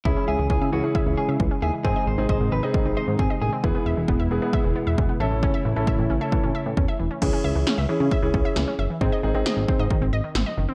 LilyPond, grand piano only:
\new Staff \with { instrumentName = "Grand piano" } { \time 4/4 \key cis \minor \tempo 4 = 134 <cis' e' gis'>4~ <cis' e' gis'>16 r16 <cis' e' gis'>16 <cis' e' gis'>4. r8. | <bis dis' gis'>8 r16 <bis dis' gis'>8. r16 <bis dis' gis'>4. r8. | <b e' gis'>4~ <b e' gis'>16 r16 <b e' gis'>16 <b e' gis'>4. r16 <cis' e' a'>8~ | <cis' e' a'>8 r16 <cis' e' a'>8. r16 <cis' e' a'>4. r8. |
<cis' e' gis'>4~ <cis' e' gis'>16 r16 <cis' e' gis'>8 r16 <cis' e' gis'>4~ <cis' e' gis'>16 r8 | <bis dis' gis'>8 <bis dis' gis'>16 <bis dis' gis'>4. r4. r16 | }